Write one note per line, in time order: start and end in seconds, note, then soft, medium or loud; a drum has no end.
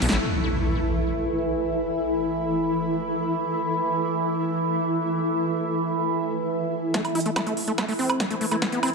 0.00 0.08 B1 loud
0.00 0.22 E3 medium
0.00 0.25 A3 medium
0.00 0.07 B3 medium
0.00 6.93 E4 medium
0.00 6.94 A4 medium
0.00 6.94 E5 medium
0.00 open hi-hat loud
0.00 ride medium
0.09 0.18 A1 medium
0.09 0.17 E4 medium
0.09 snare loud
0.09 closed hi-hat medium
0.23 6.93 E3 medium
0.23 6.93 E4 medium
0.23 impact medium
6.94 8.95 E3 medium
6.94 7.01 A3 medium
6.94 8.95 E4 medium
6.94 kick loud
6.94 snare soft
6.94 closed hi-hat medium
7.05 closed hi-hat medium
7.05 high woodblock soft
7.15 7.20 E4 medium
7.15 open hi-hat loud
7.20 closed hi-hat medium
7.26 7.30 A3 medium
7.26 closed hi-hat medium
7.36 7.41 A3 medium
7.36 8.95 A4 medium
7.36 kick loud
7.36 snare soft
7.36 closed hi-hat medium
7.36 high woodblock medium
7.47 7.54 A3 medium
7.47 closed hi-hat medium
7.57 open hi-hat loud
7.68 7.72 A3 medium
7.68 closed hi-hat medium
7.77 7.85 A3 medium
7.77 8.95 E5 medium
7.77 kick loud
7.77 snare medium
7.77 closed hi-hat medium
7.77 high woodblock soft
7.89 7.93 A3 loud
7.89 open hi-hat medium
7.99 8.22 C4 medium
7.99 open hi-hat loud
8.10 closed hi-hat medium
8.10 high woodblock medium
8.20 8.25 A3 medium
8.20 kick loud
8.20 snare medium
8.20 closed hi-hat medium
8.30 8.35 A3 medium
8.30 closed hi-hat medium
8.41 8.46 A3 medium
8.41 open hi-hat loud
8.51 8.56 A3 medium
8.51 closed hi-hat medium
8.51 high woodblock soft
8.62 8.65 A3 medium
8.62 kick loud
8.62 snare medium
8.62 closed hi-hat medium
8.72 8.80 B3 medium
8.72 closed hi-hat medium
8.83 8.90 C4 loud
8.83 open hi-hat loud
8.83 high woodblock medium
8.88 closed hi-hat medium